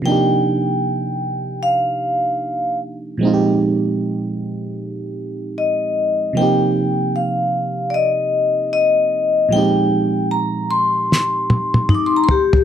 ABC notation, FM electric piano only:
X:1
M:4/4
L:1/8
Q:"Swing 16ths" 1/4=76
K:Cm
V:1 name="FM electric piano"
[C,F,B,DEG]8 | [B,,F,A,CEFG]8 | [C,F,B,CEG]8 | [B,,F,A,CEG]8 |]